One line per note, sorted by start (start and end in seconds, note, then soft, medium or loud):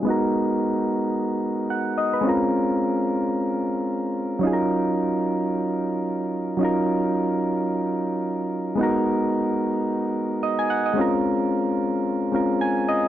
0.03 2.18 G#3 medium
0.03 2.19 B3 medium
0.03 2.20 D#4 medium
0.08 2.21 F#4 medium
0.08 1.68 A#4 medium
1.70 1.96 F#5 medium
1.98 2.12 D#5 medium
2.13 2.39 B4 medium
2.21 4.37 G#3 medium
2.21 4.38 C4 medium
2.21 4.39 C#4 medium
2.27 4.40 F4 medium
2.27 4.40 A#4 medium
4.39 6.55 F#3 medium
4.39 6.56 C#4 medium
4.39 6.57 D#4 medium
4.45 6.58 F4 medium
4.45 4.52 G#4 medium
4.53 6.62 A#4 medium
6.57 8.73 F#3 medium
6.57 8.74 C#4 medium
6.57 8.75 D#4 medium
6.63 8.76 F4 medium
6.63 8.77 A#4 medium
8.75 10.91 G#3 medium
8.75 10.92 B3 medium
8.75 10.93 D#4 medium
8.81 10.94 F#4 medium
8.81 10.95 A#4 medium
10.43 10.58 D#5 medium
10.59 10.69 G#5 medium
10.70 10.85 F#5 medium
10.86 11.11 D#5 medium
10.94 12.29 G#3 medium
10.94 12.30 C4 medium
10.94 12.31 C#4 medium
10.99 12.32 F4 medium
10.99 12.33 A#4 medium
12.32 13.08 G#3 medium
12.32 13.08 C4 soft
12.32 13.08 C#4 soft
12.32 13.08 F4 medium
12.32 13.08 A#4 medium
12.61 12.86 G#5 medium
12.88 13.08 D#5 medium